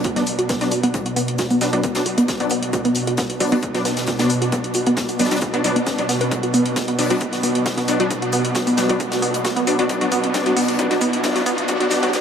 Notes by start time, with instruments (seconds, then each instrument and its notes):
Already playing: ambient pad B2
0.04 synth arpeggio sound F#4, kick, closed hi-hat
0.16 synth stab F#3 B3 D4, synth arpeggio sound B3, snare, closed hi-hat
0.26 closed hi-hat, open hi-hat
0.39 synth arpeggio sound F#4, closed hi-hat
0.49 synth arpeggio sound B3, kick, snare, closed hi-hat
0.61 synth stab F#3 B3 D4, snare, closed hi-hat
0.71 synth arpeggio sound F#4, closed hi-hat, open hi-hat
0.83 synth arpeggio sound B3, closed hi-hat
0.94 kick, closed hi-hat
1.06 synth arpeggio sound F#4, closed hi-hat
1.16 synth arpeggio sound B3, closed hi-hat, open hi-hat
1.28 closed hi-hat
1.38 synth arpeggio sound F#4, kick, snare, closed hi-hat
1.50 synth arpeggio sound B3, closed hi-hat, open hi-hat
1.61 synth stab F#3 B3 D4, snare, closed hi-hat, open hi-hat
1.73 synth stab F#3 B3 D4, synth arpeggio sound F#4, closed hi-hat
1.83 synth arpeggio sound B3, kick, closed hi-hat
1.95 synth stab F#3 B3 D4, snare, closed hi-hat
2.06 synth arpeggio sound F#4, open hi-hat
2.18 synth arpeggio sound B3, closed hi-hat
2.28 kick, snare, closed hi-hat
2.40 synth stab F#3 B3 D4, synth arpeggio sound F#4, closed hi-hat
2.50 synth arpeggio sound B3, closed hi-hat, open hi-hat
2.63 closed hi-hat
2.73 synth arpeggio sound F#4, kick, closed hi-hat
2.85 synth arpeggio sound B3, closed hi-hat
2.95 closed hi-hat, open hi-hat
3.07 synth arpeggio sound F#4, closed hi-hat
3.17 synth arpeggio sound B3, kick, snare, closed hi-hat
3.30 closed hi-hat
3.40 synth stab F#3 B3 D4, synth arpeggio sound F#4, open hi-hat
3.52 synth stab F#3 B3 D4, synth arpeggio sound B3, closed hi-hat
3.63 kick, closed hi-hat
3.74 synth stab F#3 B3 D4, synth arpeggio sound F#4, snare, closed hi-hat
3.85 synth arpeggio sound B3, snare, closed hi-hat, open hi-hat
3.97 snare, closed hi-hat
4.07 synth arpeggio sound F#4, kick, snare, closed hi-hat
4.19 synth stab F#3 B3 D4, synth arpeggio sound B3, snare, closed hi-hat
4.30 closed hi-hat, open hi-hat
4.42 synth arpeggio sound F#4, closed hi-hat
4.52 synth arpeggio sound B3, kick, closed hi-hat
4.64 closed hi-hat
4.74 synth arpeggio sound F#4, closed hi-hat, open hi-hat
4.87 synth arpeggio sound B3, closed hi-hat
4.97 kick, snare, closed hi-hat
5.08 synth arpeggio sound F#4, closed hi-hat, open hi-hat
5.19 synth stab F#3 B3 D4, synth arpeggio sound B3, snare, closed hi-hat, open hi-hat
5.25 snare, closed hi-hat
5.31 synth stab F#3 B3 D4, snare, closed hi-hat
5.36 snare, closed hi-hat
5.41 synth arpeggio sound F#4, kick, closed hi-hat
5.54 synth stab F#3 B3 D4, synth arpeggio sound B3, closed hi-hat
5.64 synth stab F#3 B3 D4, closed hi-hat, open hi-hat
5.76 synth arpeggio sound B3, closed hi-hat
5.86 synth arpeggio sound C#4, kick, snare, closed hi-hat
5.98 synth stab F#3 B3 D4, closed hi-hat
6.09 synth arpeggio sound B3, snare, closed hi-hat, open hi-hat
6.21 synth arpeggio sound B4, closed hi-hat
6.31 kick, closed hi-hat, riser
6.43 synth arpeggio sound F#4, closed hi-hat
6.54 synth arpeggio sound B3, closed hi-hat, open hi-hat
6.66 closed hi-hat
6.76 synth arpeggio sound F#4, kick, snare, closed hi-hat
6.88 synth arpeggio sound B3, closed hi-hat
6.99 synth stab F#3 B3 D4, open hi-hat
7.10 synth stab F#3 B3 D4, synth arpeggio sound F#4, closed hi-hat
7.21 kick, closed hi-hat
7.33 synth arpeggio sound F#4, snare, closed hi-hat
7.43 synth arpeggio sound B3, closed hi-hat, open hi-hat
7.55 closed hi-hat
7.66 synth arpeggio sound F#4, kick, snare, closed hi-hat
7.77 synth arpeggio sound B3, snare, closed hi-hat
7.88 synth stab F#3 B3 D4, closed hi-hat, open hi-hat
8.00 synth stab F#3 B3 D4, synth arpeggio sound F#4, closed hi-hat
8.10 kick, closed hi-hat
8.22 synth arpeggio sound F#4, closed hi-hat
8.32 synth arpeggio sound B3, closed hi-hat, open hi-hat
8.45 closed hi-hat
8.55 synth arpeggio sound F#4, kick, snare, closed hi-hat
8.67 synth arpeggio sound B3, closed hi-hat, open hi-hat
8.77 synth stab F#3 B3 D4, snare, closed hi-hat, open hi-hat
8.89 synth stab F#3 B3 D4, synth arpeggio sound F#4, closed hi-hat
9.00 kick, closed hi-hat
9.12 synth arpeggio sound F#4, snare, closed hi-hat
9.22 synth arpeggio sound B3, open hi-hat
9.34 closed hi-hat
9.45 synth arpeggio sound F#4, kick, snare, closed hi-hat
9.56 synth arpeggio sound B3, closed hi-hat
9.67 synth stab F#3 B3 D4, closed hi-hat, open hi-hat
9.79 synth stab F#3 B3 D4, synth arpeggio sound F#4, closed hi-hat
9.89 synth stab F#3 B3 D4, kick, closed hi-hat
10.01 synth stab F#3 B3 D4, synth arpeggio sound F#4, closed hi-hat
10.12 synth arpeggio sound B3, closed hi-hat, open hi-hat
10.24 closed hi-hat
10.34 synth stab F#3 B3 D4, kick, snare, closed hi-hat
10.46 synth stab F#3 B3 D4, synth arpeggio sound F#4, closed hi-hat
10.57 synth arpeggio sound B3, open hi-hat
10.68 closed hi-hat
10.79 synth stab F#3 B3 D4, kick, closed hi-hat
10.90 synth stab F#3 B3 D4, synth arpeggio sound F#4, snare, closed hi-hat
11.01 synth arpeggio sound B3, closed hi-hat, open hi-hat
11.13 closed hi-hat
11.24 synth stab F#3 B3 D4, kick, snare, closed hi-hat
11.36 synth stab F#3 B3 D4, synth arpeggio sound F#4, snare, closed hi-hat
11.46 synth arpeggio sound B3, closed hi-hat, open hi-hat
11.58 closed hi-hat
11.68 synth stab F#3 B3 D4, kick, closed hi-hat
11.80 synth stab F#3 B3 D4, synth arpeggio sound F#4, closed hi-hat
11.91 synth stab F#3 B3 D4, snare, closed hi-hat, open hi-hat
12.03 synth stab F#3 B3 D4, synth arpeggio sound F#4, closed hi-hat
12.13 synth stab F#3 B3 D4, kick, snare, closed hi-hat